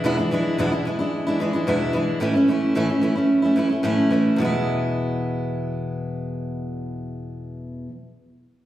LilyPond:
\new Staff \with { instrumentName = "Steel-string acoustic guitar" } { \time 4/4 \key e \major \tempo 4 = 110 <e, b, e gis d' e'>16 <e gis d' e'>16 <e gis d' e'>8 <e, b, e gis d' e'>16 <e gis d' e'>16 <e gis d' e'>16 <e gis d' e'>8 <e gis d' e'>16 <e gis d' e'>16 <e gis d' e'>16 <e, b, e gis d' e'>8 <e gis d' e'>8 | <a, e a cis' e'>16 <a cis' e'>16 <e a cis' e'>8 <a, e a cis' e'>16 <a cis' e'>16 <e a cis' e'>16 <a cis' e'>8 <a cis' e'>16 <e a cis' e'>16 <a cis' e'>16 <a, e a cis' e'>8 <e a cis' e'>8 | <e, b, e gis b e'>1~ | <e, b, e gis b e'>1 | }